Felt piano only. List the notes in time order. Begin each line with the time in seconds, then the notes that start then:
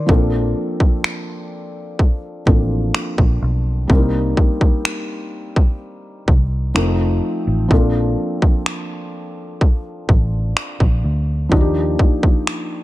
Already playing: A#4 C5 D5
0.06 F3 A#3 C4 D4
0.11 A4
2.46 F3 A#3 C4 D4 A4
3.88 G3 A#3 C4 D4
3.93 A#4
3.98 D#4
6.74 F3 A3 C4 D#4 A4
7.68 F3 A#3 C4 D4
7.74 A4
11.49 F3 A#3 D4 D#4
11.54 F#4
11.61 G4